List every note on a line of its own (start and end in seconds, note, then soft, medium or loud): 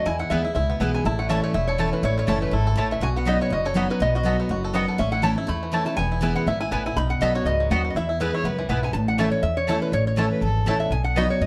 0.06 0.53 E2 medium
0.06 0.23 E2 medium
0.06 0.19 E4 medium
0.06 0.19 G#5 loud
0.19 0.30 E4 medium
0.19 0.31 F#5 medium
0.30 0.51 D#2 medium
0.30 0.43 E3 medium
0.30 0.44 G#3 medium
0.30 0.41 B3 medium
0.30 0.44 B3 loud
0.30 0.43 E4 medium
0.30 0.41 E4 medium
0.30 0.43 E4 medium
0.30 0.41 B4 medium
0.30 0.53 E5 medium
0.30 0.41 G#5 medium
0.44 0.56 B3 soft
0.44 0.55 E4 medium
0.55 0.76 C#2 medium
0.55 1.03 B2 medium
0.55 0.80 E4 medium
0.55 0.90 E5 medium
0.70 0.93 B3 medium
0.80 1.01 B1 medium
0.80 1.04 E3 medium
0.80 1.04 G#3 medium
0.80 0.90 B3 medium
0.80 1.05 B3 loud
0.80 0.90 E4 medium
0.80 1.05 E4 medium
0.80 0.90 B4 loud
0.80 0.90 G#5 medium
0.94 1.05 B3 medium
0.94 1.06 G#5 medium
1.05 1.40 A1 loud
1.05 1.52 A2 medium
1.05 1.41 E4 medium
1.05 1.18 A5 loud
1.19 1.42 A3 medium
1.19 1.29 F#5 medium
1.29 1.53 E3 loud
1.29 1.39 A3 medium
1.29 1.53 A3 medium
1.29 1.65 C#4 medium
1.29 1.54 C#4 loud
1.29 1.40 E4 medium
1.29 1.54 E4 loud
1.29 1.40 C#5 medium
1.29 1.42 E5 medium
1.29 1.40 A5 loud
1.43 1.77 A3 medium
1.43 1.55 C#5 medium
1.54 1.89 E1 medium
1.54 2.01 E2 medium
1.54 1.90 E4 medium
1.54 1.67 E5 medium
1.67 2.02 A4 medium
1.67 1.93 C#5 medium
1.78 2.02 E3 medium
1.78 1.88 A3 medium
1.78 2.02 A3 medium
1.78 2.15 A3 medium
1.78 2.03 C#4 medium
1.78 1.89 E4 medium
1.78 2.03 E4 loud
1.78 1.89 C#5 medium
1.78 1.89 A5 loud
1.93 2.26 E3 medium
1.93 2.04 B4 medium
2.03 2.20 A1 loud
2.03 2.50 A2 medium
2.03 2.39 E4 medium
2.03 2.17 C#5 medium
2.18 2.41 A3 medium
2.18 2.92 C#5 medium
2.27 2.49 F#1 medium
2.27 2.51 E3 medium
2.27 2.38 A3 medium
2.27 2.52 A3 loud
2.27 2.52 C#4 loud
2.27 2.64 C#4 medium
2.27 2.38 E4 medium
2.27 2.52 E4 loud
2.27 2.38 C#5 loud
2.27 2.38 A5 medium
2.41 2.76 A3 medium
2.41 2.54 B4 loud
2.51 2.73 G#1 medium
2.51 2.76 G#2 medium
2.51 2.88 E4 medium
2.51 2.84 A4 loud
2.67 3.00 A4 medium
2.76 2.98 A1 medium
2.76 3.00 A2 medium
2.76 2.87 A3 medium
2.76 3.03 A3 medium
2.76 2.87 E4 medium
2.76 2.88 C#5 medium
2.76 2.88 A5 loud
2.91 3.02 E3 medium
2.91 3.03 E5 medium
3.00 3.36 B1 loud
3.00 3.49 B2 medium
3.00 3.38 F#4 medium
3.00 3.08 G#5 loud
3.16 3.40 B3 medium
3.16 3.28 F#5 medium
3.25 3.50 F#3 medium
3.25 3.36 B3 medium
3.25 3.50 B3 loud
3.25 3.50 D#4 loud
3.25 3.63 D#4 medium
3.25 3.37 F#4 medium
3.25 3.51 F#4 loud
3.25 3.37 D#5 medium
3.25 3.41 D#5 medium
3.25 3.37 B5 loud
3.41 3.74 B3 medium
3.41 3.53 C#5 medium
3.50 3.86 F#1 medium
3.50 3.98 F#2 medium
3.50 3.87 F#4 medium
3.50 3.66 D#5 medium
3.65 3.99 A4 medium
3.65 3.88 C#5 medium
3.74 3.99 F#3 medium
3.74 3.99 B3 loud
3.74 3.86 B3 medium
3.74 4.01 B3 medium
3.74 3.99 D#4 loud
3.74 4.00 F#4 loud
3.74 3.86 F#4 medium
3.74 3.86 D#5 loud
3.74 3.86 B5 loud
3.90 4.24 F#3 medium
3.90 4.01 B4 medium
4.00 4.35 B1 loud
4.00 4.48 B2 medium
4.00 4.37 B3 medium
4.00 4.15 D#5 loud
4.15 4.48 F#4 medium
4.15 4.72 D#5 medium
4.23 4.48 F#3 loud
4.23 4.49 B3 loud
4.23 4.35 B3 medium
4.23 4.49 D#4 loud
4.23 4.49 F#4 loud
4.23 4.35 F#4 medium
4.23 4.61 A4 medium
4.23 4.35 D#5 medium
4.23 4.36 B5 medium
4.40 4.73 B3 medium
4.49 4.85 F#1 medium
4.49 4.97 F#2 medium
4.49 4.86 F#4 medium
4.64 4.87 A4 medium
4.73 4.98 F#3 medium
4.73 4.84 B3 medium
4.73 4.98 B3 medium
4.73 5.00 B3 medium
4.73 4.98 D#4 loud
4.73 4.84 F#4 medium
4.73 4.98 F#4 loud
4.73 4.85 D#5 loud
4.73 5.00 F#5 medium
4.73 4.85 B5 loud
4.88 5.00 A4 medium
4.98 5.34 A1 loud
4.98 5.46 A2 medium
4.98 5.35 C#4 medium
4.98 5.11 E5 loud
5.12 5.37 E4 medium
5.12 5.23 F#5 medium
5.22 5.36 E3 loud
5.22 5.33 A3 medium
5.22 5.37 A3 medium
5.22 5.36 C#4 loud
5.22 5.34 E4 medium
5.22 5.34 E4 loud
5.22 5.60 A4 medium
5.22 5.34 C#5 loud
5.22 5.47 A5 loud
5.22 5.34 A5 medium
5.35 5.48 C#4 medium
5.35 5.47 E4 medium
5.35 5.71 E4 medium
5.47 5.95 E2 medium
5.47 5.83 E2 medium
5.47 5.84 A3 medium
5.47 5.72 B5 loud
5.63 5.96 E3 medium
5.72 5.86 E3 medium
5.72 5.86 A3 medium
5.72 5.83 A3 medium
5.72 5.86 C#4 loud
5.72 5.83 E4 medium
5.72 5.84 E4 loud
5.72 5.98 E4 medium
5.72 5.83 C#5 loud
5.72 5.83 A5 loud
5.85 5.98 A3 medium
5.85 5.98 C#4 medium
5.85 5.97 E4 medium
5.85 5.96 A5 medium
5.96 6.33 E1 medium
5.96 6.44 E2 medium
5.96 6.36 B3 medium
5.96 6.37 G#5 loud
6.12 6.22 E4 medium
6.21 6.45 E3 loud
6.21 6.46 G#3 loud
6.21 6.32 B3 medium
6.21 6.46 B3 loud
6.21 6.32 E4 medium
6.21 6.46 E4 loud
6.21 6.47 E4 medium
6.21 6.33 B4 medium
6.21 6.33 G#5 loud
6.35 6.72 B3 medium
6.35 6.48 F#5 loud
6.46 6.68 G#1 medium
6.46 6.71 G#2 medium
6.46 6.59 E4 medium
6.46 6.61 E5 loud
6.60 6.85 E4 medium
6.60 6.71 G#5 medium
6.71 6.93 A1 medium
6.71 6.96 A2 medium
6.71 6.82 B3 medium
6.71 6.97 B3 medium
6.71 6.82 E4 medium
6.71 6.82 B4 medium
6.71 6.85 G#5 loud
6.71 6.82 G#5 loud
6.86 6.97 E4 medium
6.86 6.96 G#5 medium
6.96 7.14 B1 loud
6.96 7.45 B2 medium
6.96 7.32 D#4 medium
6.96 7.11 B5 loud
7.10 7.22 F#5 medium
7.21 7.42 B1 medium
7.21 7.45 F#3 loud
7.21 7.31 B3 medium
7.21 7.45 B3 medium
7.21 7.46 D#4 loud
7.21 7.32 F#4 medium
7.21 7.46 F#4 loud
7.21 7.57 A4 medium
7.21 7.35 D#5 loud
7.21 7.32 D#5 medium
7.21 7.32 B5 loud
7.35 7.69 F#4 medium
7.35 7.46 C#5 medium
7.45 7.67 C#2 medium
7.45 7.70 G#2 medium
7.45 7.82 B3 medium
7.45 7.71 D#5 medium
7.60 7.94 F#3 medium
7.70 7.91 D#2 medium
7.70 7.95 F#2 medium
7.70 7.81 B3 medium
7.70 7.81 F#4 loud
7.70 7.96 F#4 medium
7.70 7.81 D#5 loud
7.70 7.88 F#5 loud
7.70 7.81 B5 loud
7.85 7.96 B3 medium
7.90 7.96 D#5 medium
7.95 8.30 E2 medium
7.95 8.43 E2 medium
7.95 8.08 E4 medium
7.95 8.66 E5 medium
8.09 8.19 E4 medium
8.20 8.44 E3 medium
8.20 8.44 G#3 loud
8.20 8.30 B3 medium
8.20 8.44 B3 loud
8.20 8.33 E4 medium
8.20 8.30 E4 medium
8.20 8.45 E4 loud
8.20 8.36 B4 loud
8.20 8.31 B4 medium
8.20 8.31 G#5 medium
8.34 8.68 E4 medium
8.34 8.47 C#5 loud
8.44 8.65 C#2 medium
8.44 8.69 F#2 medium
8.44 8.80 B3 medium
8.44 8.68 B4 loud
8.59 8.92 E3 medium
8.69 8.90 B1 medium
8.69 8.93 G#2 medium
8.69 8.79 B3 medium
8.69 8.79 E4 medium
8.69 8.95 E4 medium
8.69 8.92 B4 medium
8.69 8.80 B4 loud
8.69 8.80 G#5 loud
8.83 8.94 B3 medium
8.83 8.93 G#5 medium
8.93 9.28 A1 loud
8.93 9.42 A2 medium
8.93 9.07 A5 loud
9.08 9.18 F#5 medium
9.18 9.42 E3 medium
9.18 9.28 A3 medium
9.18 9.25 A3 medium
9.18 9.43 A3 loud
9.18 9.25 C#4 medium
9.18 9.43 C#4 loud
9.18 9.29 E4 medium
9.18 9.25 E4 medium
9.18 9.43 E4 loud
9.18 9.29 C#5 loud
9.18 9.31 E5 medium
9.18 9.29 A5 medium
9.31 9.42 C#5 medium
9.43 9.78 E2 medium
9.43 9.90 E2 medium
9.43 9.56 E5 loud
9.57 9.80 C#5 medium
9.67 9.92 E3 medium
9.67 9.78 A3 medium
9.67 9.92 A3 loud
9.67 9.75 A3 medium
9.67 9.93 C#4 loud
9.67 9.75 C#4 medium
9.67 9.78 E4 loud
9.67 9.93 E4 medium
9.67 9.75 E4 medium
9.67 9.78 C#5 medium
9.67 9.78 A5 medium
9.82 9.93 B4 medium
9.92 10.27 A1 loud
9.92 10.40 A2 loud
9.92 10.06 C#5 medium
10.07 10.80 C#5 medium
10.16 10.41 E3 loud
10.16 10.27 A3 medium
10.16 10.41 A3 loud
10.16 10.24 A3 medium
10.16 10.41 C#4 loud
10.16 10.24 C#4 medium
10.16 10.27 E4 medium
10.16 10.42 E4 loud
10.16 10.24 E4 medium
10.16 10.28 C#5 medium
10.16 10.28 A5 medium
10.31 10.42 B4 loud
10.41 10.63 G#1 medium
10.41 10.89 E2 medium
10.41 10.72 A4 loud
10.66 10.88 A1 medium
10.66 10.90 E3 medium
10.66 10.77 A3 medium
10.66 10.91 A3 medium
10.66 10.74 A3 medium
10.66 10.91 C#4 loud
10.66 10.74 C#4 medium
10.66 10.77 E4 medium
10.66 10.91 E4 loud
10.66 10.74 E4 medium
10.66 10.77 C#5 loud
10.66 10.77 A5 loud
10.80 10.92 E5 medium
10.90 11.26 B1 loud
10.90 11.39 B2 medium
10.90 11.04 G#5 loud
11.04 11.16 F#5 medium
11.16 11.40 F#3 loud
11.16 11.26 B3 medium
11.16 11.40 B3 medium
11.16 11.23 B3 medium
11.16 11.41 D#4 medium
11.16 11.23 D#4 medium
11.16 11.26 F#4 medium
11.16 11.41 F#4 loud
11.16 11.23 F#4 medium
11.16 11.27 D#5 loud
11.16 11.29 D#5 medium
11.16 11.27 B5 medium
11.30 11.42 C#5 medium
11.41 11.46 F#2 medium
11.41 11.46 D#5 medium